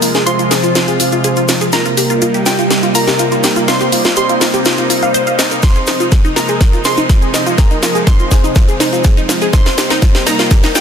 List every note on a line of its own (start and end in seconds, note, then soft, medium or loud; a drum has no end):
0.00 5.59 C3 medium
0.00 1.69 F3 medium
0.00 1.69 G#3 medium
0.00 1.71 F4 medium
0.00 0.06 F4 medium
0.00 0.22 A#4 loud
0.00 0.22 A#5 medium
0.00 open hi-hat loud
0.00 shaker medium
0.14 0.18 G#4 medium
0.14 snare soft
0.14 closed hi-hat soft
0.14 shaker soft
0.26 0.33 F4 medium
0.26 1.64 C5 loud
0.26 1.63 C6 loud
0.26 closed hi-hat medium
0.26 shaker medium
0.39 0.43 F4 medium
0.39 closed hi-hat soft
0.39 shaker soft
0.51 0.55 G#4 medium
0.51 snare medium
0.51 open hi-hat loud
0.51 shaker medium
0.64 0.70 F4 medium
0.64 closed hi-hat soft
0.64 shaker soft
0.75 0.79 F4 medium
0.75 snare medium
0.75 closed hi-hat medium
0.75 shaker medium
0.88 0.92 G#4 medium
0.88 closed hi-hat soft
0.88 shaker soft
1.00 1.06 F4 medium
1.00 open hi-hat loud
1.00 shaker medium
1.12 1.16 F4 medium
1.12 closed hi-hat soft
1.12 shaker soft
1.24 1.28 G#4 medium
1.24 closed hi-hat medium
1.24 shaker medium
1.36 1.43 F4 medium
1.36 closed hi-hat soft
1.36 shaker soft
1.48 1.53 F4 medium
1.48 snare medium
1.48 open hi-hat medium
1.48 shaker loud
1.61 1.65 G#4 medium
1.61 closed hi-hat soft
1.61 shaker soft
1.72 5.59 G3 medium
1.72 5.59 A#3 medium
1.72 10.81 D#4 medium
1.72 1.79 F4 medium
1.72 2.37 A#4 loud
1.72 2.37 A#5 loud
1.72 snare medium
1.72 closed hi-hat medium
1.72 shaker medium
1.86 1.89 F4 medium
1.86 closed hi-hat soft
1.86 shaker soft
1.97 2.01 G4 medium
1.97 open hi-hat loud
1.97 shaker loud
2.10 2.16 F4 medium
2.10 closed hi-hat soft
2.10 shaker soft
2.22 2.26 F4 medium
2.22 closed hi-hat medium
2.22 shaker soft
2.34 2.38 G4 medium
2.34 closed hi-hat soft
2.34 shaker soft
2.46 2.53 F4 medium
2.46 2.90 G4 medium
2.46 2.90 G5 medium
2.46 snare medium
2.46 open hi-hat loud
2.46 shaker medium
2.59 2.62 F4 medium
2.59 closed hi-hat soft
2.59 shaker soft
2.70 2.74 G4 medium
2.70 snare medium
2.70 closed hi-hat medium
2.70 shaker soft
2.83 2.89 F4 medium
2.83 closed hi-hat soft
2.83 shaker soft
2.95 2.99 F4 medium
2.95 3.70 A#4 loud
2.95 3.68 A#5 medium
2.95 open hi-hat loud
2.95 shaker loud
3.07 3.11 G4 medium
3.07 snare medium
3.07 closed hi-hat soft
3.07 shaker soft
3.19 3.26 F4 medium
3.19 closed hi-hat medium
3.19 shaker medium
3.32 3.36 F4 medium
3.32 closed hi-hat soft
3.32 shaker soft
3.43 3.48 G4 medium
3.43 snare medium
3.43 open hi-hat loud
3.43 shaker medium
3.56 3.62 F4 medium
3.56 closed hi-hat soft
3.56 shaker soft
3.68 3.72 F4 medium
3.68 4.12 C5 medium
3.68 4.12 C6 medium
3.68 snare medium
3.68 closed hi-hat medium
3.68 shaker medium
3.81 3.84 G4 medium
3.81 closed hi-hat soft
3.81 shaker soft
3.92 3.99 F4 medium
3.92 open hi-hat loud
3.92 shaker medium
4.04 4.09 F4 medium
4.04 snare medium
4.04 closed hi-hat soft
4.04 shaker soft
4.16 4.21 G4 medium
4.16 5.54 C5 loud
4.16 5.54 C6 loud
4.16 closed hi-hat medium
4.16 shaker medium
4.29 4.36 F4 medium
4.29 closed hi-hat soft
4.29 shaker soft
4.41 4.45 F4 medium
4.41 snare medium
4.41 open hi-hat loud
4.41 shaker medium
4.54 4.57 G4 medium
4.54 closed hi-hat soft
4.54 shaker soft
4.65 4.72 F4 medium
4.65 snare medium
4.65 closed hi-hat medium
4.65 shaker medium
4.77 4.82 F4 medium
4.77 closed hi-hat soft
4.77 shaker soft
4.90 5.00 F4 medium
4.90 open hi-hat loud
4.90 shaker loud
5.03 5.09 F5 medium
5.03 closed hi-hat soft
5.03 shaker soft
5.14 5.21 C5 loud
5.14 closed hi-hat medium
5.14 shaker medium
5.27 5.36 F5 medium
5.27 closed hi-hat soft
5.27 shaker soft
5.39 5.48 D#4 loud
5.39 snare medium
5.39 open hi-hat medium
5.39 shaker medium
5.51 5.55 A#4 medium
5.51 closed hi-hat soft
5.51 shaker soft
5.62 10.81 C3 medium
5.62 9.50 F3 medium
5.62 9.50 G#3 medium
5.62 5.67 F4 medium
5.62 6.27 C5 loud
5.62 6.27 C6 loud
5.62 kick loud
5.62 snare medium
5.62 closed hi-hat medium
5.62 shaker medium
5.75 5.79 G#4 medium
5.75 closed hi-hat soft
5.75 shaker soft
5.87 5.91 D#4 loud
5.87 snare medium
5.87 open hi-hat loud
5.87 shaker medium
6.00 6.04 F4 medium
6.00 closed hi-hat soft
6.00 shaker soft
6.12 6.16 G#4 medium
6.12 kick loud
6.12 snare medium
6.12 closed hi-hat medium
6.12 shaker medium
6.25 6.28 D#4 loud
6.25 closed hi-hat soft
6.25 shaker soft
6.36 6.40 F4 medium
6.36 6.80 A#4 medium
6.36 6.80 A#5 medium
6.36 snare medium
6.36 open hi-hat medium
6.36 shaker medium
6.48 6.53 G#4 medium
6.48 closed hi-hat soft
6.48 shaker soft
6.61 6.65 D#4 loud
6.61 kick loud
6.61 snare medium
6.61 closed hi-hat medium
6.61 shaker soft
6.73 6.77 F4 medium
6.73 closed hi-hat soft
6.73 shaker soft
6.84 6.89 G#4 medium
6.84 7.49 C5 loud
6.84 7.49 C6 loud
6.84 snare medium
6.84 open hi-hat loud
6.84 shaker medium
6.97 7.01 D#4 loud
6.97 closed hi-hat soft
6.97 shaker soft
7.09 7.13 F4 medium
7.09 kick loud
7.09 snare medium
7.09 closed hi-hat medium
7.09 shaker medium
7.22 7.26 G#4 medium
7.22 closed hi-hat soft
7.22 shaker soft
7.34 7.38 D#4 loud
7.34 snare medium
7.34 open hi-hat medium
7.34 shaker medium
7.46 7.50 F4 medium
7.46 closed hi-hat soft
7.46 shaker soft
7.58 7.62 G#4 medium
7.58 8.02 A#4 loud
7.58 8.02 A#5 medium
7.58 kick loud
7.58 snare medium
7.58 closed hi-hat medium
7.58 shaker medium
7.70 7.75 D#4 loud
7.70 closed hi-hat soft
7.70 shaker soft
7.83 7.87 F4 medium
7.83 snare medium
7.83 open hi-hat loud
7.83 shaker medium
7.95 7.99 G#4 medium
7.95 closed hi-hat soft
7.95 shaker soft
8.07 8.11 D#4 loud
8.07 9.44 C5 loud
8.07 9.44 C6 loud
8.07 kick loud
8.07 snare medium
8.07 closed hi-hat medium
8.07 shaker soft
8.19 8.23 F4 medium
8.19 closed hi-hat soft
8.19 shaker soft
8.31 8.35 G#4 medium
8.31 kick medium
8.31 snare medium
8.31 open hi-hat medium
8.31 shaker medium
8.44 8.48 D#4 loud
8.44 closed hi-hat soft
8.44 shaker soft
8.55 8.60 F4 medium
8.55 kick loud
8.55 snare medium
8.55 closed hi-hat medium
8.55 shaker medium
8.68 8.72 G#4 medium
8.68 closed hi-hat soft
8.68 shaker soft
8.80 8.84 D#4 loud
8.80 snare medium
8.80 open hi-hat loud
8.80 shaker loud
8.93 8.96 F4 medium
8.93 closed hi-hat soft
8.93 shaker soft
9.04 9.09 G#4 medium
9.04 kick loud
9.04 snare medium
9.04 closed hi-hat medium
9.04 shaker medium
9.17 9.21 D#4 loud
9.17 closed hi-hat soft
9.17 shaker soft
9.29 9.33 F4 medium
9.29 snare medium
9.29 open hi-hat medium
9.29 shaker medium
9.41 9.45 G#4 medium
9.41 closed hi-hat soft
9.41 shaker soft
9.53 10.81 G3 medium
9.53 10.81 A#3 medium
9.53 9.57 D#4 loud
9.53 10.28 C5 loud
9.53 10.27 C6 loud
9.53 kick loud
9.53 snare medium
9.53 closed hi-hat medium
9.53 shaker soft
9.66 9.70 F4 medium
9.66 snare medium
9.66 closed hi-hat soft
9.66 shaker soft
9.78 9.82 G4 medium
9.78 snare loud
9.78 open hi-hat loud
9.78 shaker medium
9.90 9.94 D#4 loud
9.90 snare medium
9.90 closed hi-hat soft
9.90 shaker soft
10.02 kick loud
10.02 snare loud
10.02 closed hi-hat loud
10.02 shaker soft
10.15 10.19 G4 medium
10.15 snare medium
10.15 closed hi-hat soft
10.15 shaker soft
10.26 10.31 D#4 loud
10.26 10.77 A#4 medium
10.26 10.75 A#5 medium
10.26 snare loud
10.26 open hi-hat medium
10.26 shaker medium
10.39 10.43 F4 medium
10.39 snare medium
10.39 closed hi-hat soft
10.39 shaker soft
10.51 10.55 G4 medium
10.51 kick loud
10.51 snare loud
10.51 closed hi-hat loud
10.51 shaker soft
10.63 10.67 D#4 loud
10.63 snare medium
10.63 closed hi-hat soft
10.63 shaker soft
10.75 10.79 F4 medium
10.75 10.81 G4 loud
10.75 10.81 G5 loud
10.75 snare loud
10.75 open hi-hat loud
10.75 shaker medium